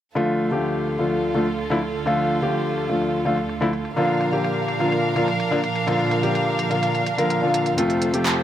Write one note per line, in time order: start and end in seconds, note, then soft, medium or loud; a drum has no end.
0.15 3.93 D2 medium
0.15 0.48 D3 medium
0.15 3.93 D3 medium
0.15 0.49 F3 medium
0.15 3.93 A3 medium
0.15 0.49 A3 medium
0.15 3.93 F4 medium
0.15 0.49 F4 medium
0.15 3.93 A4 medium
0.40 closed hi-hat medium
0.51 0.96 D3 medium
0.51 0.96 F3 medium
0.51 0.97 A3 medium
0.51 0.97 G4 medium
0.51 closed hi-hat medium
0.87 closed hi-hat medium
0.99 1.32 D3 medium
0.99 1.32 F3 medium
0.99 1.32 A3 medium
0.99 1.32 F4 medium
0.99 closed hi-hat medium
1.11 closed hi-hat medium
1.34 1.44 D3 medium
1.34 1.44 F3 medium
1.34 1.45 A3 medium
1.34 1.45 F4 medium
1.34 closed hi-hat medium
1.47 closed hi-hat soft
1.59 closed hi-hat medium
1.70 1.76 D3 medium
1.70 1.77 F3 medium
1.70 1.77 A3 medium
1.70 1.77 E4 loud
1.83 closed hi-hat medium
1.95 closed hi-hat soft
2.06 2.39 D3 medium
2.06 2.39 F3 medium
2.06 2.39 A3 medium
2.06 2.40 F4 loud
2.06 closed hi-hat medium
2.18 closed hi-hat soft
2.30 closed hi-hat medium
2.42 2.87 D3 medium
2.42 2.87 F3 medium
2.42 2.87 A3 medium
2.42 2.87 G4 medium
2.42 closed hi-hat soft
2.54 closed hi-hat medium
2.78 closed hi-hat medium
2.89 3.22 D3 medium
2.89 3.23 F3 medium
2.89 3.23 A3 medium
2.89 3.23 F4 medium
2.89 closed hi-hat soft
3.02 closed hi-hat medium
3.25 3.35 D3 medium
3.25 3.35 F3 medium
3.25 3.35 A3 medium
3.25 3.35 F4 medium
3.25 closed hi-hat medium
3.37 closed hi-hat soft
3.49 closed hi-hat medium
3.61 3.67 D3 medium
3.61 3.67 F3 medium
3.61 3.67 A3 medium
3.61 3.67 E4 loud
3.73 closed hi-hat medium
3.85 closed hi-hat soft
3.96 7.74 A#2 medium
3.96 4.30 D3 medium
3.96 4.30 F3 medium
3.96 7.74 F3 medium
3.96 4.30 A#3 medium
3.96 7.74 D4 medium
3.96 4.30 F4 loud
3.96 7.74 A#4 medium
3.96 7.74 F5 medium
3.96 closed hi-hat medium
4.09 closed hi-hat soft
4.21 closed hi-hat medium
4.32 4.77 D3 medium
4.32 4.77 F3 medium
4.32 4.77 A#3 medium
4.32 4.78 G4 medium
4.32 closed hi-hat soft
4.45 closed hi-hat medium
4.68 closed hi-hat medium
4.80 5.13 D3 medium
4.80 5.13 F3 medium
4.80 5.13 A#3 medium
4.80 5.13 F4 medium
4.80 closed hi-hat soft
4.92 closed hi-hat medium
5.15 5.25 D3 medium
5.15 5.25 F3 medium
5.15 5.26 A#3 medium
5.15 5.26 F4 medium
5.15 closed hi-hat medium
5.28 closed hi-hat soft
5.40 closed hi-hat medium
5.51 5.57 D3 medium
5.51 5.58 F3 medium
5.51 5.58 A#3 medium
5.51 5.58 D4 loud
5.64 closed hi-hat medium
5.76 closed hi-hat soft
5.87 6.20 D3 medium
5.87 6.20 F3 medium
5.87 6.20 A#3 medium
5.87 6.21 F4 loud
5.87 closed hi-hat medium
5.99 closed hi-hat soft
6.11 closed hi-hat medium
6.22 6.68 D3 medium
6.22 6.68 F3 medium
6.22 6.68 A#3 medium
6.22 6.68 G4 medium
6.22 closed hi-hat soft
6.35 closed hi-hat medium
6.59 closed hi-hat medium
6.70 7.03 D3 medium
6.70 7.04 F3 medium
6.70 7.04 A#3 medium
6.70 7.04 F4 medium
6.70 closed hi-hat soft
6.83 closed hi-hat medium
6.95 closed hi-hat soft
7.06 closed hi-hat medium
7.18 7.39 D3 medium
7.18 7.39 F3 medium
7.18 7.39 A#3 medium
7.18 7.40 A#4 medium
7.18 closed hi-hat soft
7.30 closed hi-hat medium
7.42 7.75 D3 medium
7.42 7.75 F3 medium
7.42 7.75 A#3 medium
7.42 7.75 F4 medium
7.54 closed hi-hat medium
7.66 closed hi-hat soft
7.77 8.43 F2 medium
7.77 8.10 C3 medium
7.77 8.11 F3 medium
7.77 8.43 F3 medium
7.77 8.11 A3 medium
7.77 8.43 C4 medium
7.77 8.11 F4 loud
7.77 8.43 A4 medium
7.77 8.43 C5 medium
7.77 closed hi-hat medium
7.90 closed hi-hat soft
8.02 closed hi-hat medium
8.13 8.43 C3 medium
8.13 8.43 F3 medium
8.13 8.43 A3 medium
8.13 8.43 G4 medium
8.13 closed hi-hat soft
8.26 clap loud
8.26 closed hi-hat medium